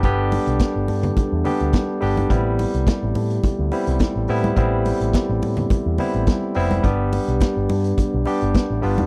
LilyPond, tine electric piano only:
\new Staff \with { instrumentName = "Tine electric piano" } { \time 4/4 \key a \minor \tempo 4 = 106 <g b d' g'>4. r4 <g b d' g'>8. r16 <g b d' g'>8 | <g b c' e'>4. r4 <g b c' e'>8. r16 <g b c' e'>8 | <g b c' e'>4. r4 <g b c' e'>8. r16 <g b c' e'>8 | <g b d' g'>4. r4 <g b d' g'>8. r16 <g b d' f'>8 | }